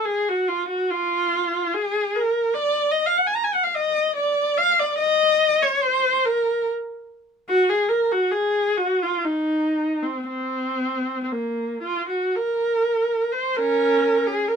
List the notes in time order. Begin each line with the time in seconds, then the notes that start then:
0.05 G#4
0.28 F#4
0.48 F4
0.69 F#4
0.90 F4
1.74 G#4
2.15 A#4
2.54 D5
2.91 D#5
3.06 F5
3.17 F#5
3.27 G#5
3.35 A#5
3.43 G#5
3.54 F#5
3.63 F5
3.75 D#5
4.16 D5
4.58 F5
4.80 D5
4.98 D#5
5.62 C#5
5.82 C5
6.25 A#4
7.49 F#4
7.69 G#4
7.89 A#4
8.12 F#4
8.31 G#4
8.77 F#4
9.03 F4
9.24 D#4
10.03 C4
10.28 C4
11.23 C4
11.32 A#3
11.83 F4
12.09 F#4
12.36 A#4
13.32 C5
13.56 C#4 A#4
14.27 G#4
14.48 A#4